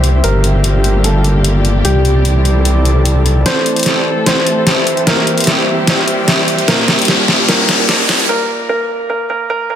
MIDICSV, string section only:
0, 0, Header, 1, 2, 480
1, 0, Start_track
1, 0, Tempo, 402685
1, 283, Time_signature, 4, 2, 24, 8
1, 11628, End_track
2, 0, Start_track
2, 0, Title_t, "String section"
2, 0, Program_c, 0, 48
2, 0, Note_on_c, 0, 52, 76
2, 0, Note_on_c, 0, 55, 69
2, 0, Note_on_c, 0, 60, 66
2, 0, Note_on_c, 0, 67, 79
2, 244, Note_off_c, 0, 52, 0
2, 263, Note_off_c, 0, 60, 0
2, 263, Note_off_c, 0, 67, 0
2, 283, Note_on_c, 0, 50, 79
2, 283, Note_on_c, 0, 58, 68
2, 283, Note_on_c, 0, 67, 84
2, 2183, Note_off_c, 0, 50, 0
2, 2184, Note_off_c, 0, 58, 0
2, 2203, Note_on_c, 0, 52, 79
2, 2203, Note_on_c, 0, 60, 69
2, 4074, Note_off_c, 0, 55, 0
2, 4084, Note_off_c, 0, 67, 0
2, 4103, Note_off_c, 0, 52, 0
2, 4104, Note_off_c, 0, 60, 0
2, 4123, Note_on_c, 0, 52, 78
2, 4123, Note_on_c, 0, 57, 71
2, 4123, Note_on_c, 0, 60, 71
2, 4123, Note_on_c, 0, 69, 85
2, 6024, Note_off_c, 0, 57, 0
2, 6024, Note_off_c, 0, 69, 0
2, 6043, Note_on_c, 0, 55, 76
2, 6043, Note_on_c, 0, 67, 84
2, 7924, Note_off_c, 0, 60, 0
2, 7925, Note_off_c, 0, 52, 0
2, 7943, Note_off_c, 0, 67, 0
2, 7963, Note_on_c, 0, 62, 75
2, 7963, Note_on_c, 0, 67, 92
2, 7964, Note_on_c, 0, 46, 84
2, 9844, Note_off_c, 0, 55, 0
2, 9864, Note_off_c, 0, 46, 0
2, 9864, Note_off_c, 0, 62, 0
2, 9864, Note_off_c, 0, 67, 0
2, 11628, End_track
0, 0, End_of_file